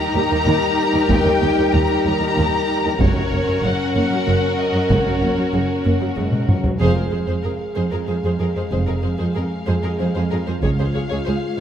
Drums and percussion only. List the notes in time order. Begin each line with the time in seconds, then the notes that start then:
1.10 taiko
3.01 taiko
4.90 taiko
6.33 taiko mid
6.49 taiko low-mid
6.64 taiko low
6.81 taiko
10.63 taiko